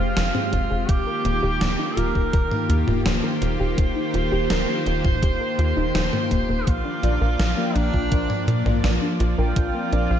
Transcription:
0.00 0.14 F1 medium
0.00 0.85 G#3 medium
0.00 0.85 C4 medium
0.00 0.90 F4 loud
0.00 0.86 G4 medium
0.16 0.32 F1 loud
0.16 0.23 F5 loud
0.16 snare loud
0.16 closed hi-hat loud
0.34 0.50 C4 medium
0.34 mid tom medium
0.52 0.68 F1 loud
0.52 0.59 F4 medium
0.52 kick medium
0.52 closed hi-hat medium
0.70 0.86 F1 medium
0.70 0.86 G#4 medium
0.89 1.04 D#1 loud
0.89 6.63 D#3 medium
0.89 6.63 A#3 medium
0.89 6.63 F4 medium
0.89 0.99 G4 medium
0.89 1.99 G4 loud
0.89 6.63 G4 medium
0.89 kick loud
0.89 closed hi-hat medium
1.07 1.13 A#4 medium
1.25 1.40 D#1 loud
1.25 1.31 A#3 medium
1.25 closed hi-hat medium
1.43 1.58 D#1 medium
1.43 1.53 G4 loud
1.61 1.76 D#1 loud
1.61 1.71 A#3 medium
1.61 snare loud
1.61 closed hi-hat loud
1.79 1.89 D#4 medium
1.97 2.12 D#1 medium
1.97 2.13 F4 loud
1.97 2.91 A#4 loud
1.97 closed hi-hat medium
2.15 2.31 D#1 medium
2.15 2.21 G4 loud
2.15 kick medium
2.33 2.49 D#1 loud
2.33 2.40 A#4 loud
2.33 kick loud
2.33 closed hi-hat medium
2.51 2.67 A#3 medium
2.51 mid tom medium
2.69 2.85 D#2 loud
2.69 2.76 D#4 medium
2.69 closed hi-hat medium
2.87 3.03 D#1 medium
2.87 3.03 F4 medium
2.87 mid tom medium
3.05 3.21 D#1 loud
3.05 3.16 G4 medium
3.05 6.69 C5 loud
3.05 snare loud
3.05 closed hi-hat medium
3.24 3.30 A#4 medium
3.42 3.57 D#1 loud
3.42 3.48 A#3 medium
3.42 closed hi-hat medium
3.60 3.75 D#1 medium
3.60 3.70 G4 loud
3.78 3.93 D#1 loud
3.78 3.88 A#3 medium
3.78 kick loud
3.78 closed hi-hat medium
3.96 4.06 D#4 medium
4.14 4.29 D#1 medium
4.14 4.30 F4 loud
4.14 closed hi-hat medium
4.32 4.47 D#1 medium
4.32 4.38 G4 loud
4.50 4.65 D#1 loud
4.50 4.56 A#4 loud
4.50 snare loud
4.50 closed hi-hat medium
4.68 4.84 A#3 medium
4.86 5.02 D#1 medium
4.86 4.93 D#4 medium
4.86 closed hi-hat medium
5.04 5.20 D#1 medium
5.04 5.20 F4 medium
5.04 kick loud
5.04 mid tom medium
5.23 5.38 D#1 loud
5.23 5.33 G4 medium
5.23 kick loud
5.23 closed hi-hat medium
5.41 5.47 A#4 medium
5.59 5.74 D#2 loud
5.59 5.65 F4 medium
5.59 closed hi-hat medium
5.77 5.92 D#1 medium
5.77 5.87 D#4 loud
5.95 6.10 D#1 loud
5.95 6.05 D#4 loud
5.95 snare loud
5.95 closed hi-hat loud
6.13 6.28 A#3 loud
6.13 mid tom medium
6.31 6.46 D#1 medium
6.31 6.41 A#3 loud
6.31 kick medium
6.31 closed hi-hat medium
6.49 6.64 D#1 medium
6.49 6.64 A#3 loud
6.67 6.82 A#1 loud
6.67 10.20 F3 medium
6.67 6.77 A#3 medium
6.67 9.53 A#3 medium
6.67 7.77 F4 loud
6.67 10.20 D5 loud
6.67 kick loud
6.67 closed hi-hat medium
6.85 6.95 D4 medium
7.03 7.18 A#1 loud
7.03 7.21 D4 loud
7.03 7.19 F4 loud
7.03 7.21 F4 loud
7.03 7.21 A#4 medium
7.03 7.21 D5 loud
7.03 closed hi-hat medium
7.21 7.36 A#1 medium
7.21 7.27 A#4 loud
7.39 7.55 A#1 loud
7.39 7.46 D5 loud
7.39 snare loud
7.39 closed hi-hat medium
7.57 7.73 A#3 medium
7.57 8.07 D4 loud
7.57 8.07 F4 medium
7.57 8.07 A#4 medium
7.57 8.07 G5 loud
7.75 7.91 A#1 medium
7.75 7.82 D4 medium
7.75 8.69 D4 loud
7.75 closed hi-hat medium
7.93 8.09 A#1 medium
7.93 8.09 F4 medium
7.93 kick medium
8.12 8.27 A#1 loud
8.12 8.30 D4 medium
8.12 8.30 F4 medium
8.12 8.22 A#4 medium
8.12 8.30 A#4 medium
8.12 8.30 C5 loud
8.12 kick loud
8.12 closed hi-hat medium
8.30 8.36 D5 medium
8.30 mid tom medium
8.48 8.63 A#2 loud
8.48 8.54 A#3 medium
8.48 closed hi-hat medium
8.66 8.81 A#1 medium
8.66 8.95 D4 medium
8.66 8.95 F4 medium
8.66 8.76 A#4 medium
8.66 8.95 A#4 medium
8.66 8.95 D5 medium
8.66 mid tom medium
8.84 8.99 A#1 loud
8.84 8.94 A#3 medium
8.84 10.20 F4 loud
8.84 snare loud
8.84 closed hi-hat medium
9.02 9.12 D4 medium
9.20 9.35 A#1 loud
9.20 9.36 F4 loud
9.20 closed hi-hat medium
9.38 9.53 A#1 medium
9.38 9.88 D4 loud
9.38 9.88 F4 medium
9.38 9.88 A#4 medium
9.38 9.44 A#4 loud
9.38 9.88 G5 loud
9.56 9.72 A#1 loud
9.56 10.20 C4 medium
9.56 9.63 D5 loud
9.56 kick loud
9.56 closed hi-hat medium
9.74 9.90 A#3 medium
9.92 10.08 A#1 loud
9.92 9.99 D4 medium
9.92 10.11 D4 loud
9.92 10.11 F4 medium
9.92 10.11 A#4 medium
9.92 10.11 D5 loud
9.92 closed hi-hat medium
10.10 10.20 A#1 medium
10.10 10.20 F4 medium

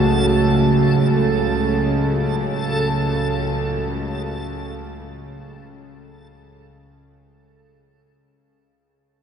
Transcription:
0.00 8.58 C#2 medium
0.00 8.49 C#3 medium
0.00 8.58 C#3 medium
0.00 8.49 A3 medium
0.00 8.48 C#4 medium
0.00 8.50 F#4 medium
0.00 8.49 A4 medium
0.00 8.49 C#5 medium

